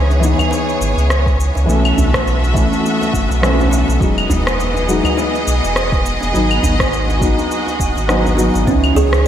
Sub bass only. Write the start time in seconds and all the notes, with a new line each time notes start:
Already playing: C#2
0.81 G#1
0.97 C#2
1.56 C#2
1.68 B1
1.97 B1
3.14 F#1
3.30 B1
3.88 B1
4.01 E1
4.30 E1
5.47 B1
5.63 E1
6.22 E1
6.35 G#1
6.64 G#1
7.80 D#1
7.96 G#1
8.55 G#1
8.67 C#2
8.96 C#2